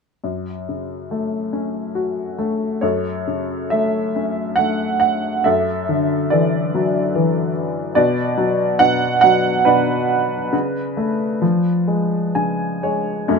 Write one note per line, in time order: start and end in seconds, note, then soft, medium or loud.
0.24 2.79 F#2 soft
0.69 2.35 C#3 soft
1.11 2.37 A3 soft
1.53 2.79 C#4 soft
1.95 2.80 F#4 soft
2.38 2.81 A3 soft
2.81 5.41 F#2 soft
2.81 4.11 A4 soft
2.81 3.67 C#5 soft
3.27 4.97 C#3 soft
3.70 4.57 A3 soft
3.70 4.60 E5 medium
4.16 5.42 C#4 soft
4.56 5.43 A3 soft
4.56 4.98 F#5 medium
5.00 5.41 F#5 medium
5.44 7.92 F#2 soft
5.44 6.30 A4 soft
5.44 6.33 E5 medium
5.89 7.51 D3 soft
6.30 7.14 E3 soft
6.30 7.51 A4 soft
6.30 7.51 D5 medium
6.75 7.93 F#3 soft
7.15 7.94 E3 soft
7.95 8.79 B2 medium
7.95 9.19 F#4 medium
7.95 8.82 D5 medium
8.38 9.22 F#3 soft
8.79 9.65 B2 soft
8.79 9.20 F#5 medium
9.21 10.50 F#3 soft
9.21 9.62 F#5 medium
9.65 10.51 B2 soft
9.65 12.32 D4 soft
9.65 12.32 B4 medium
10.53 11.40 C#3 medium
10.97 11.41 A3 soft
11.42 13.25 F3 soft
11.87 12.82 G#3 soft
12.35 13.26 C#3 soft
12.35 12.80 G#5 soft
12.83 13.28 G#3 soft
12.83 13.26 C#5 soft
13.28 13.39 F#2 soft
13.28 13.39 A3 soft
13.28 13.39 C#4 soft